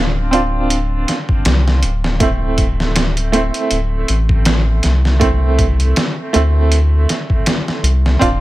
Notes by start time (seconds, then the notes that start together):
Already playing: D1 C4 D4 F4
0.31 C4 D4 F4, closed hi-hat
0.70 closed hi-hat
1.08 snare, closed hi-hat
1.29 kick
1.45 C2, snare, closed hi-hat
1.68 snare
1.83 D1, closed hi-hat
2.04 snare
2.20 A3 C4 E4, kick, closed hi-hat
2.58 kick, closed hi-hat
2.80 snare
2.96 snare, closed hi-hat
3.17 closed hi-hat
3.32 A3 C4 E4, closed hi-hat
3.54 closed hi-hat
3.71 D1, closed hi-hat
4.08 A1, closed hi-hat
4.29 kick
4.45 snare, closed hi-hat
4.83 C2, snare, closed hi-hat
5.05 snare
5.20 A3 C4 E4, kick, closed hi-hat
5.59 kick, closed hi-hat
5.80 closed hi-hat
5.96 snare, closed hi-hat
6.33 D2 A3 C4 E4, closed hi-hat
6.72 closed hi-hat
7.09 snare, closed hi-hat
7.30 kick
7.46 snare, closed hi-hat
7.68 snare
7.83 C2, closed hi-hat
8.06 snare
8.19 D1 C4 D4 F4, kick, closed hi-hat